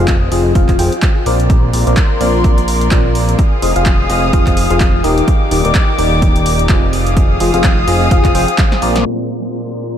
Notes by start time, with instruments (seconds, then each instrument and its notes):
Already playing: analog synth bass F1, fm electric piano F3 C4 G#4
0.00 fm electric piano F4 F5
0.08 kick, clap, closed hi-hat
0.32 analog synth bass F1, fm electric piano F3 C4 F4 G#4 D#5, open hi-hat
0.55 analog synth bass F1, fm electric piano F3 C4 F4 G#4 F5, kick, closed hi-hat
0.69 kick, clap, closed hi-hat
0.79 analog synth bass F1, fm electric piano F3 C4 F4 G#4 G5, open hi-hat
0.92 closed hi-hat
1.02 kick, clap, closed hi-hat
1.26 analog synth bass A#1, fm electric piano A#2 C4 F4 A#4 D5, open hi-hat
1.40 closed hi-hat
1.50 string section A#4 D5 C6, kick, closed hi-hat
1.73 analog synth bass A#1, fm electric piano A#2 C4 F4 A#4 D5, open hi-hat
1.87 analog synth bass A#1, fm electric piano A#2 C4 F4 A#4 D5, closed hi-hat
1.97 kick, clap, closed hi-hat
2.21 analog synth bass A#1, fm electric piano A#2 C4 F4 A#4 D5, open hi-hat
2.44 kick, closed hi-hat
2.58 closed hi-hat
2.68 open hi-hat
2.81 closed hi-hat
2.91 analog synth bass A#1, fm electric piano A#2 C4 F4 A#4 D5, kick, clap, closed hi-hat
3.15 open hi-hat
3.29 closed hi-hat
3.39 string section G#4 F5 D#6, kick, closed hi-hat
3.62 analog synth bass F1, fm electric piano F3 C4 F4 G#4 D#5, open hi-hat
3.76 analog synth bass F1, fm electric piano F3 C4 F4 G#4 F5, closed hi-hat
3.86 kick, clap, closed hi-hat
4.10 analog synth bass F1, fm electric piano F3 C4 F4 G#4 D#5, open hi-hat
4.33 analog synth bass F1, fm electric piano F3 C4 F4 G#4 F5, kick, closed hi-hat
4.47 kick, clap, closed hi-hat
4.57 open hi-hat
4.70 analog synth bass F1, fm electric piano F3 C4 F4 G#4 F5, closed hi-hat
4.80 kick, clap, closed hi-hat
5.04 analog synth bass D#1, fm electric piano D#3 A#3 D#4 G4 D#5, string section D#4 G4 D6, open hi-hat
5.18 closed hi-hat
5.28 kick, closed hi-hat
5.51 analog synth bass D#1, fm electric piano D#3 A#3 D#4 G4 D5, open hi-hat
5.65 analog synth bass D#1, fm electric piano D#3 A#3 D#4 G4 D5, closed hi-hat
5.75 kick, clap, closed hi-hat
5.99 analog synth bass D#1, fm electric piano D#3 A#3 D#4 G4 D5, open hi-hat
6.22 kick, closed hi-hat
6.36 closed hi-hat
6.46 open hi-hat
6.59 closed hi-hat
6.69 analog synth bass F1, fm electric piano F3 C4 F4 G#4 D#5, kick, clap, closed hi-hat
6.93 string section G#4 F5 D#6, open hi-hat
7.07 closed hi-hat
7.17 kick, closed hi-hat
7.40 analog synth bass F1, fm electric piano F3 C4 F4 G#4 D#5, open hi-hat
7.54 analog synth bass F1, fm electric piano F3 C4 F4 G#4 F5, closed hi-hat
7.64 kick, clap, closed hi-hat
7.88 analog synth bass F1, fm electric piano F3 C4 F4 G#4 D#5, open hi-hat
8.11 analog synth bass F1, fm electric piano F3 C4 F4 G#4 F5, kick, closed hi-hat
8.24 kick, clap, closed hi-hat
8.35 analog synth bass F1, fm electric piano F3 C4 F4 G#4 G5, open hi-hat
8.48 closed hi-hat
8.58 kick, snare, clap, closed hi-hat
8.72 snare
8.82 analog synth bass A#1, fm electric piano A#2 C4 F4 A#4 D5, open hi-hat
8.96 snare, closed hi-hat
9.06 fm electric piano A#2 C4 F4 A#4 D5, string section A#4 D5 C6, crash